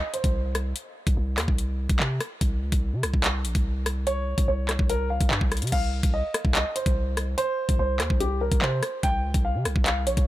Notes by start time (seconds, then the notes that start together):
Already playing: D#5
0.14 C5, closed hi-hat
0.24 C2, kick, closed hi-hat
0.55 cross-stick, closed hi-hat
0.76 closed hi-hat
1.07 C2, kick, closed hi-hat
1.17 C2
1.38 D#2, cross-stick, clap, closed hi-hat
1.48 C2, kick
1.58 closed hi-hat
1.89 C2, kick, closed hi-hat
2.00 C3, clap
2.20 cross-stick, closed hi-hat
2.41 C2, kick, closed hi-hat
2.62 C#2
2.72 C2, kick, closed hi-hat
2.93 C3
3.03 C2, cross-stick, closed hi-hat
3.14 C2, kick
3.24 clap, closed hi-hat
3.45 A#1, closed hi-hat
3.55 C2, kick, closed hi-hat
3.86 cross-stick, closed hi-hat
4.07 C#5, closed hi-hat
4.38 C2, kick, closed hi-hat
4.48 C2 C#5
4.69 cross-stick, clap, closed hi-hat
4.79 C2, kick
4.90 A#4, closed hi-hat
5.10 F5
5.21 C2, kick, closed hi-hat
5.31 G2, clap
5.41 C2, kick
5.52 cross-stick, closed hi-hat
5.57 closed hi-hat
5.62 C3, closed hi-hat
5.67 closed hi-hat
5.72 C2 F5, kick, closed hi-hat, crash
6.03 C2, kick, closed hi-hat
6.14 D#5
6.34 cross-stick, closed hi-hat
6.45 C2, kick
6.55 D#5, clap, closed hi-hat
6.76 C5, closed hi-hat
6.86 C2, kick, closed hi-hat
7.17 cross-stick, closed hi-hat
7.38 C5, closed hi-hat
7.69 C2, kick, closed hi-hat
7.79 C2 C5
8.00 D#2, cross-stick, clap, closed hi-hat
8.10 C2, kick
8.20 G4, closed hi-hat
8.41 A#4
8.52 C2, kick, closed hi-hat
8.62 C3 C5, clap
8.83 cross-stick, closed hi-hat
9.03 C2 G5, kick, closed hi-hat
9.24 C#2
9.34 C2, kick, closed hi-hat
9.45 F5
9.55 C3
9.65 C2, cross-stick, closed hi-hat
9.76 C2, kick
9.86 F5, clap, closed hi-hat
10.07 A#1 C#5, closed hi-hat
10.17 C2, kick, closed hi-hat